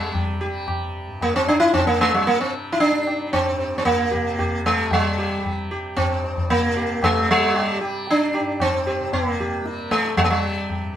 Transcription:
Already playing: tanpura G2 C3 G3, sitar G3
0.14 tabla tin, tabla ge
0.41 tanpura G3, sitar G4
0.68 tabla na, tabla ge
1.07 tanpura G2
1.21 sitar A#3, tabla tin, tabla ge
1.36 sitar C4
1.48 sitar D4, tabla na
1.60 sitar E4
1.67 tanpura C3
1.74 sitar C4, tabla na, tabla ge
1.87 sitar A#3
2.01 sitar A3, tabla te
2.14 sitar G3
2.27 tanpura G3, sitar A#3, tabla te
2.41 sitar C4
2.54 tabla te
2.72 sitar E4
2.80 sitar D4, tabla tin
2.90 tanpura G3
3.07 tabla na
3.33 sitar C4, tabla na, tabla ge
3.50 tanpura G2
3.78 sitar C4
3.85 sitar A#3, tabla na, tabla ge
4.11 tanpura C3, sitar G4, tabla ge
4.39 sitar G4, tabla na, tabla ge
4.65 sitar A3, tabla ge
4.75 tanpura G3
4.91 sitar G3, tabla tin, tabla ge
5.18 sitar G4
5.35 tanpura G3
5.45 tabla tin, tabla ge
5.71 sitar G4
5.97 tanpura G2, sitar C4, tabla na, tabla ge
6.24 tabla te
6.37 tabla ge
6.50 sitar A#3, tabla tin, tabla ge
6.58 tanpura C3
6.77 sitar G4
7.03 sitar A3, tabla na, tabla ge
7.18 tanpura G3
7.31 sitar G3
7.54 sitar G4, tabla na
7.79 tanpura G3, sitar G4, tabla na
8.07 sitar D4, tabla tin
8.34 sitar G4, tabla na
8.40 tanpura G2
8.60 sitar C4, tabla na, tabla ge
8.87 sitar G4
8.99 tanpura C3
9.13 sitar A#3, tabla na, tabla ge
9.40 sitar G4, tabla ge
9.61 tanpura G3
9.66 tabla te
9.79 tabla te
9.91 sitar A3, tabla ke
10.05 tabla te
10.17 sitar G3, tabla tin, tabla ge
10.21 tanpura G3, sitar A3
10.30 sitar G3
10.70 tabla tin, tabla ge
10.82 tanpura G2

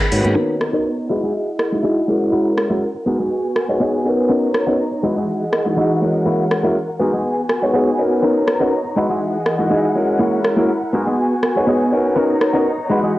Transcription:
Already playing: string section G#4 F#5 B5
0.00 muted clean electric guitar stroke, closed hi-hat
0.11 fingered electric bass G#2, grand piano D#3 A#3 B3 C#4 F#4, open hi-hat, tambourine
0.24 fingered electric bass G#2, muted clean electric guitar stroke, closed hi-hat, tambourine, high conga
0.36 string section B3 D#4 C#5 A#5, clean electric guitar D#4 A#4 B4 C#5
0.61 cross-stick
0.73 grand piano B3 C#4 D#4 F#4 A#4, clean electric guitar D#4 A#4 B4 C#5
0.98 muted clean electric guitar stroke
1.09 grand piano G#3 D#4 E4 F#4 B4, clean electric guitar E4 F#4 G#4 D#5, string section E4 G#4 D#5 F#5
1.23 grand piano G#3 D#4 E4 F#4 G#4
1.59 muted clean electric guitar stroke, cross-stick
1.71 grand piano G#3 D#4 E4 F#4 D#5, muted clean electric guitar stroke
1.83 grand piano G#3 D#4 E4 F#4 D#5, clean electric guitar E4 F#4 G#4 D#5
2.08 grand piano G#3 C#4 E4 F#4 A#4
2.32 clean electric guitar E4 F#4 A#4, string section A#4
2.58 cross-stick
2.70 grand piano G#3 C#4 E4 F#4 A#4, clean electric guitar E4 F#4 A#4
2.94 muted clean electric guitar stroke
3.06 grand piano G#3 B3 D#4 F#4 A#4, clean electric guitar B3 F#4 G#4, string section B3 F#4 G#5
3.19 grand piano G#3 B3 D#4 F#4 G#4
3.56 muted clean electric guitar stroke, cross-stick
3.68 grand piano G#3 B3 D#4 F#4 C#5, muted clean electric guitar stroke
3.80 grand piano G#3 B3 D#4 F#4 C#5, clean electric guitar B3 F#4 G#4
4.04 grand piano B3 C#4 D#4 F#4 A#4
4.29 clean electric guitar B3 C#4 D#4 A#4, string section D#4 C#5 A#5
4.54 cross-stick
4.67 clean electric guitar B3 C#4 D#4 A#4, grand piano B3 C#4 D#4 F#4 A#4
4.91 muted clean electric guitar stroke
5.03 string section E3 G#4 D#5 F#5, clean electric guitar G#3 D#4 E4 F#4, grand piano G#3 D#4 E4 F#4 B4
5.16 grand piano G#3 D#4 E4 F#4 G#4
5.52 muted clean electric guitar stroke, cross-stick
5.65 grand piano G#3 D#4 E4 F#4 D#5, muted clean electric guitar stroke
5.77 clean electric guitar G#3 D#4 E4 F#4, grand piano G#3 D#4 E4 F#4 D#5
6.02 grand piano G#3 C#4 E4 F#4 A#4
6.26 clean electric guitar A#3 E4 F#4, string section A#4
6.51 cross-stick
6.63 grand piano G#3 C#4 E4 F#4 A#4, clean electric guitar A#3 E4 F#4
6.88 muted clean electric guitar stroke
7.00 grand piano G#3 B3 D#4 F#4 A#4, clean electric guitar B3 F#4 G#4, string section B3 F#4 G#5
7.13 grand piano G#3 B3 D#4 F#4 G#4
7.49 muted clean electric guitar stroke, cross-stick
7.62 grand piano G#3 B3 D#4 F#4 C#5, muted clean electric guitar stroke
7.74 grand piano G#3 B3 D#4 F#4 C#5, clean electric guitar B3 F#4 G#4
7.98 grand piano B3 C#4 D#4 F#4 A#4
8.23 clean electric guitar B3 C#4 D#4 A#4, string section D#4 C#5 A#5
8.48 cross-stick
8.60 clean electric guitar B3 C#4 D#4 A#4, grand piano B3 C#4 D#4 F#4 A#4
8.85 muted clean electric guitar stroke
8.96 string section E3 G#4 D#5 F#5, clean electric guitar G#3 D#4 E4 F#4, grand piano G#3 D#4 E4 F#4 B4
9.09 grand piano G#3 D#4 E4 F#4 G#4
9.46 muted clean electric guitar stroke, cross-stick
9.58 grand piano G#3 D#4 E4 F#4 D#5, muted clean electric guitar stroke
9.70 clean electric guitar G#3 D#4 E4 G#4, grand piano G#3 D#4 E4 F#4 D#5
9.95 grand piano G#3 C#4 E4 F#4 A#4
10.19 clean electric guitar A#3 E4 F#4, string section E4 A#4
10.45 cross-stick
10.57 grand piano G#3 C#4 E4 F#4 A#4, clean electric guitar A#3 E4 F#4
10.81 muted clean electric guitar stroke
10.93 grand piano G#3 B3 D#4 F#4 A#4, clean electric guitar B3 F#4 G#4, string section B3 F#4 G#5
11.06 grand piano G#3 B3 D#4 F#4 G#4
11.42 muted clean electric guitar stroke, cross-stick
11.55 grand piano G#3 B3 D#4 F#4 C#5, muted clean electric guitar stroke
11.67 grand piano G#3 B3 D#4 F#4 C#5, clean electric guitar B3 F#4 G#4
11.91 grand piano B3 C#4 D#4 F#4 A#4
12.16 clean electric guitar B3 C#4 D#4 A#4, string section D#4 C#5 A#5
12.41 cross-stick
12.53 clean electric guitar B3 C#4 D#4 A#4, grand piano B3 C#4 D#4 F#4 A#4
12.78 muted clean electric guitar stroke
12.90 string section E3 G#4 D#5 F#5, clean electric guitar G#3 D#4 E4 F#4, grand piano G#3 D#4 E4 F#4 B4
13.03 grand piano G#3 D#4 E4 F#4 G#4

